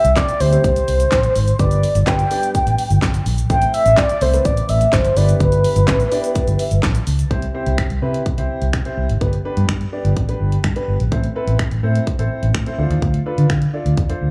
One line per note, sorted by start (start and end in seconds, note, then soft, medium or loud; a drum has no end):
0.00 0.16 E5 loud
0.05 0.12 C2 loud
0.05 closed hi-hat medium
0.05 shaker medium
0.16 0.42 D5 medium
0.16 kick loud
0.16 snare medium
0.16 clap loud
0.16 closed hi-hat medium
0.16 shaker medium
0.29 closed hi-hat medium
0.29 shaker medium
0.40 0.56 D2 loud
0.40 0.47 G3 medium
0.40 0.47 C4 medium
0.40 0.47 E4 medium
0.40 0.47 G4 medium
0.40 0.64 C5 medium
0.40 0.47 C5 medium
0.40 open hi-hat medium
0.40 shaker medium
0.52 1.04 G3 medium
0.52 1.04 C4 medium
0.52 1.04 E4 medium
0.52 1.04 G4 medium
0.52 1.04 C5 medium
0.52 closed hi-hat medium
0.52 shaker medium
0.64 0.80 C2 loud
0.64 1.61 C5 loud
0.64 kick loud
0.64 closed hi-hat medium
0.64 shaker medium
0.76 closed hi-hat medium
0.76 shaker medium
0.88 1.04 C2 medium
0.88 open hi-hat medium
0.88 shaker medium
1.00 closed hi-hat soft
1.00 shaker medium
1.12 1.27 A1 medium
1.12 kick loud
1.12 snare medium
1.12 clap loud
1.12 closed hi-hat medium
1.12 shaker medium
1.23 closed hi-hat medium
1.23 shaker medium
1.36 1.51 G#1 medium
1.36 open hi-hat medium
1.36 shaker medium
1.48 closed hi-hat medium
1.48 shaker medium
1.59 1.83 G1 loud
1.59 1.85 G3 medium
1.59 1.85 B3 medium
1.59 1.85 D4 medium
1.59 1.85 G4 medium
1.59 1.85 B4 medium
1.59 2.09 D5 loud
1.59 kick loud
1.59 closed hi-hat medium
1.59 shaker medium
1.71 closed hi-hat medium
1.71 shaker medium
1.83 open hi-hat medium
1.83 shaker medium
1.95 2.03 G1 medium
1.95 closed hi-hat medium
1.95 shaker medium
2.07 2.23 G1 loud
2.07 2.20 G3 medium
2.07 2.20 B3 medium
2.07 2.20 D4 medium
2.07 2.20 G4 medium
2.07 2.20 B4 medium
2.07 3.26 G5 medium
2.07 kick loud
2.07 snare medium
2.07 clap loud
2.07 closed hi-hat medium
2.07 shaker medium
2.19 closed hi-hat medium
2.19 shaker medium
2.31 2.82 G3 medium
2.31 2.82 B3 medium
2.31 2.82 D4 medium
2.31 2.82 G4 medium
2.31 2.82 D5 medium
2.31 open hi-hat medium
2.31 shaker medium
2.43 closed hi-hat medium
2.43 shaker medium
2.55 kick loud
2.55 closed hi-hat medium
2.55 shaker medium
2.67 2.74 A1 medium
2.67 closed hi-hat medium
2.67 shaker medium
2.78 open hi-hat medium
2.78 shaker medium
2.90 2.98 G1 medium
2.90 closed hi-hat soft
2.90 shaker medium
3.02 3.18 G1 medium
3.02 kick loud
3.02 snare medium
3.02 clap loud
3.02 closed hi-hat medium
3.02 shaker medium
3.14 closed hi-hat medium
3.14 shaker medium
3.26 3.42 A#1 medium
3.26 open hi-hat medium
3.26 shaker medium
3.38 closed hi-hat medium
3.38 shaker medium
3.50 3.65 A1 loud
3.50 3.88 A3 medium
3.50 3.88 C4 medium
3.50 3.88 E4 medium
3.50 3.88 A4 medium
3.50 3.89 C5 medium
3.50 3.72 G5 loud
3.50 kick loud
3.50 closed hi-hat medium
3.50 shaker medium
3.62 closed hi-hat medium
3.62 shaker soft
3.74 3.96 E5 loud
3.74 open hi-hat medium
3.74 shaker medium
3.86 3.93 A1 loud
3.86 closed hi-hat medium
3.86 shaker medium
3.97 4.23 D5 loud
3.97 kick loud
3.97 snare medium
3.97 clap loud
3.97 closed hi-hat medium
3.97 shaker medium
4.09 closed hi-hat medium
4.09 shaker medium
4.21 4.37 C2 medium
4.21 4.28 A3 medium
4.21 4.28 C4 medium
4.21 4.28 E4 medium
4.21 4.28 A4 medium
4.21 4.28 C5 medium
4.21 4.47 C5 medium
4.21 open hi-hat medium
4.21 shaker medium
4.33 4.85 A3 medium
4.33 4.85 C4 medium
4.33 4.85 E4 medium
4.33 4.85 A4 medium
4.33 4.85 B4 medium
4.33 closed hi-hat medium
4.33 shaker medium
4.45 4.61 A1 loud
4.45 4.71 D5 loud
4.45 kick loud
4.45 closed hi-hat medium
4.45 shaker medium
4.57 closed hi-hat medium
4.57 shaker medium
4.69 4.85 A1 medium
4.69 4.95 E5 loud
4.69 open hi-hat medium
4.69 shaker medium
4.81 closed hi-hat soft
4.81 shaker medium
4.93 5.08 G1 medium
4.93 5.18 C5 medium
4.93 kick loud
4.93 snare medium
4.93 clap loud
4.93 closed hi-hat medium
4.93 shaker medium
5.05 closed hi-hat medium
5.05 shaker medium
5.16 5.32 G1 loud
5.16 5.74 B3 medium
5.16 5.74 D4 medium
5.16 5.74 E4 medium
5.16 5.74 G4 medium
5.16 5.74 B4 medium
5.16 5.40 D5 medium
5.16 open hi-hat medium
5.16 shaker medium
5.29 closed hi-hat soft
5.29 shaker medium
5.40 5.64 G1 loud
5.40 6.79 B4 medium
5.40 kick loud
5.40 closed hi-hat medium
5.40 shaker medium
5.52 closed hi-hat medium
5.52 shaker medium
5.64 open hi-hat medium
5.64 shaker medium
5.76 5.84 G1 medium
5.76 closed hi-hat medium
5.76 shaker medium
5.88 6.03 A1 loud
5.88 6.01 B3 medium
5.88 6.01 D4 medium
5.88 6.01 E4 medium
5.88 6.01 G4 medium
5.88 6.01 B4 medium
5.88 kick loud
5.88 snare medium
5.88 clap loud
5.88 closed hi-hat medium
5.88 shaker medium
6.00 closed hi-hat medium
6.00 shaker medium
6.12 6.63 B3 medium
6.12 6.63 D4 medium
6.12 6.63 E4 medium
6.12 6.63 G4 medium
6.12 6.63 D5 loud
6.12 open hi-hat medium
6.12 shaker medium
6.24 closed hi-hat medium
6.24 shaker medium
6.35 kick loud
6.35 closed hi-hat medium
6.35 shaker medium
6.47 6.55 G1 medium
6.47 closed hi-hat medium
6.47 shaker medium
6.59 6.82 E5 medium
6.59 open hi-hat medium
6.59 shaker medium
6.71 6.79 G1 medium
6.71 closed hi-hat soft
6.71 shaker medium
6.83 6.99 A1 loud
6.83 7.28 A5 medium
6.83 kick loud
6.83 snare medium
6.83 clap loud
6.83 closed hi-hat medium
6.83 shaker medium
6.95 closed hi-hat medium
6.95 shaker medium
7.07 7.23 C#2 medium
7.07 open hi-hat medium
7.07 shaker medium
7.19 closed hi-hat soft
7.19 shaker medium
7.31 7.46 C2 loud
7.31 7.44 C4 medium
7.31 7.44 E4 medium
7.31 7.44 G4 medium
7.31 7.44 C5 medium
7.31 kick loud
7.31 closed hi-hat medium
7.42 closed hi-hat soft
7.54 7.80 C4 medium
7.54 7.80 E4 medium
7.54 7.80 G4 medium
7.54 7.80 C5 loud
7.66 7.74 C2 loud
7.66 closed hi-hat medium
7.78 finger snap loud
7.78 kick loud
7.78 closed hi-hat medium
7.90 7.98 C2 medium
7.90 closed hi-hat medium
8.02 8.18 C3 medium
8.02 8.21 C4 medium
8.02 8.21 E4 medium
8.02 8.22 G4 medium
8.02 8.22 B4 medium
8.14 closed hi-hat soft
8.26 kick loud
8.26 closed hi-hat medium
8.38 8.46 C2 medium
8.38 8.64 C4 medium
8.38 8.64 E4 medium
8.38 8.64 G4 medium
8.38 8.64 C5 loud
8.38 closed hi-hat medium
8.62 8.70 C2 medium
8.62 closed hi-hat soft
8.73 8.81 C3 loud
8.73 finger snap loud
8.73 kick loud
8.73 closed hi-hat medium
8.85 9.05 C4 medium
8.85 9.05 E4 medium
8.85 9.05 G4 medium
8.85 9.05 C5 medium
8.85 closed hi-hat soft
8.97 9.05 C2 medium
9.09 9.17 G#1 medium
9.09 closed hi-hat soft
9.21 9.37 G1 medium
9.21 9.34 B3 medium
9.21 9.34 D4 medium
9.21 9.34 G4 medium
9.21 9.34 B4 medium
9.21 kick loud
9.21 closed hi-hat medium
9.33 closed hi-hat soft
9.45 9.71 B3 medium
9.45 9.71 D4 medium
9.45 9.71 G4 medium
9.45 9.71 B4 loud
9.57 9.65 G2 medium
9.57 closed hi-hat medium
9.69 9.84 G2 loud
9.69 finger snap loud
9.69 kick loud
9.69 closed hi-hat medium
9.81 closed hi-hat soft
9.92 10.12 B3 medium
9.92 10.12 D4 medium
9.92 10.12 G4 medium
9.92 10.12 D5 loud
10.05 10.12 G1 medium
10.05 closed hi-hat soft
10.17 10.32 A1 loud
10.17 kick loud
10.17 closed hi-hat medium
10.28 10.54 B3 medium
10.28 10.54 D4 medium
10.28 10.54 G4 medium
10.28 10.54 B4 loud
10.28 closed hi-hat medium
10.40 10.56 G1 medium
10.52 closed hi-hat soft
10.64 10.72 G2 loud
10.64 finger snap loud
10.64 kick loud
10.64 closed hi-hat medium
10.76 10.95 B3 medium
10.76 10.95 D4 medium
10.76 10.95 G4 medium
10.76 10.95 B4 loud
10.76 closed hi-hat soft
10.88 10.96 G1 medium
11.00 11.08 A#1 medium
11.00 closed hi-hat soft
11.12 11.27 A1 loud
11.12 11.25 C4 medium
11.12 11.25 E4 medium
11.12 11.25 A4 medium
11.12 11.25 C5 loud
11.12 kick loud
11.12 closed hi-hat medium
11.24 closed hi-hat medium
11.35 11.61 C4 medium
11.35 11.61 E4 medium
11.35 11.61 A4 medium
11.35 11.61 B4 loud
11.47 11.55 A1 medium
11.47 closed hi-hat soft
11.59 finger snap loud
11.59 kick loud
11.59 closed hi-hat medium
11.71 11.79 A1 medium
11.71 closed hi-hat medium
11.83 11.99 A2 loud
11.83 12.02 C4 medium
11.83 12.02 E4 medium
11.83 12.03 A4 medium
11.83 12.03 C5 medium
11.96 closed hi-hat medium
12.07 kick loud
12.07 closed hi-hat medium
12.19 12.27 A1 medium
12.19 12.45 C4 medium
12.19 12.45 E4 medium
12.19 12.45 A4 medium
12.19 12.45 C5 loud
12.19 closed hi-hat medium
12.43 12.50 A1 medium
12.43 closed hi-hat soft
12.55 12.62 A2 loud
12.55 finger snap loud
12.55 kick loud
12.55 closed hi-hat medium
12.66 12.78 C4 medium
12.66 12.78 E4 medium
12.66 12.77 A4 medium
12.66 12.77 C5 loud
12.66 closed hi-hat medium
12.78 12.86 D2 medium
12.78 13.16 D4 medium
12.78 13.17 F4 medium
12.78 13.17 A4 medium
12.78 13.17 C5 loud
12.90 12.98 D#2 medium
12.90 closed hi-hat soft
13.02 13.18 D2 loud
13.02 kick loud
13.02 closed hi-hat medium
13.14 closed hi-hat soft
13.26 13.52 D4 medium
13.26 13.52 F4 medium
13.26 13.52 A4 medium
13.26 13.52 B4 loud
13.38 13.46 D3 loud
13.38 closed hi-hat medium
13.50 13.65 D3 medium
13.50 finger snap loud
13.50 kick loud
13.50 closed hi-hat medium
13.62 closed hi-hat medium
13.73 13.93 D4 medium
13.73 13.93 F4 medium
13.73 13.93 A4 medium
13.73 13.93 D5 loud
13.86 13.93 D2 medium
13.86 closed hi-hat medium
13.97 14.13 E2 medium
13.97 kick loud
13.97 closed hi-hat medium
14.09 14.31 D4 medium
14.09 14.31 F4 medium
14.09 14.31 A4 medium
14.09 14.31 C5 medium
14.09 closed hi-hat medium
14.21 14.31 D2 medium